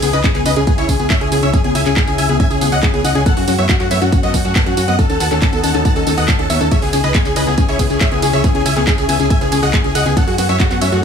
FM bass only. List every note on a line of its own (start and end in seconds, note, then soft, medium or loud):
0.02 0.11 C#2 loud
0.13 0.22 C#2 medium
0.35 0.43 C#2 medium
0.46 0.54 C#2 loud
0.56 0.65 C#2 medium
0.78 0.86 C#2 medium
0.89 0.97 C#2 loud
0.99 1.08 C#2 medium
1.21 1.29 C#2 medium
1.32 1.40 C#2 loud
1.43 1.51 C#2 medium
1.64 1.73 C#2 medium
1.75 1.83 C#2 loud
1.86 1.94 C#2 medium
2.07 2.16 C#2 medium
2.18 2.27 C#2 loud
2.29 2.37 C#2 medium
2.51 2.59 C#2 medium
2.61 2.70 C#2 loud
2.72 2.81 C#2 medium
2.94 3.02 C#2 medium
3.04 3.13 C#2 loud
3.15 3.24 C#2 medium
3.37 3.45 F#2 medium
3.48 3.56 F#2 loud
3.59 3.67 F#2 medium
3.80 3.88 F#2 medium
3.91 3.99 F#2 loud
4.02 4.10 F#2 medium
4.23 4.32 F#2 medium
4.34 4.42 F#2 loud
4.45 4.53 F#2 medium
4.66 4.75 F#2 medium
4.77 4.86 F#2 loud
4.88 4.96 F#2 medium
5.10 5.18 D#2 medium
5.20 5.29 D#2 loud
5.31 5.40 D#2 medium
5.53 5.61 D#2 medium
5.63 5.72 D#2 loud
5.74 5.83 D#2 medium
5.96 6.04 D#2 medium
6.07 6.15 D#2 loud
6.17 6.26 D#2 medium
6.39 6.47 D#2 medium
6.50 6.58 D#2 loud
6.61 6.69 D#2 medium
6.82 6.91 C#2 medium
6.93 7.01 C#2 loud
7.04 7.12 C#2 medium
7.25 7.34 C#2 medium
7.36 7.45 C#2 loud
7.47 7.55 C#2 medium
7.69 7.77 C#2 medium
7.79 7.88 C#2 loud
7.90 7.98 C#2 medium
8.12 8.20 C#2 medium
8.22 8.31 C#2 loud
8.33 8.42 C#2 medium
8.55 8.63 C#2 medium
8.66 8.74 C#2 loud
8.76 8.85 C#2 medium
8.98 9.06 C#2 medium
9.09 9.17 C#2 loud
9.20 9.28 C#2 medium
9.41 9.50 C#2 medium
9.52 9.60 C#2 loud
9.63 9.71 C#2 medium
9.84 9.93 C#2 medium
9.95 10.03 C#2 loud
10.06 10.14 C#2 loud
10.28 10.36 F#2 medium
10.38 10.47 F#2 loud
10.49 10.57 F#2 medium
10.71 10.79 F#2 medium
10.82 10.90 F#2 loud
10.92 11.01 F#2 medium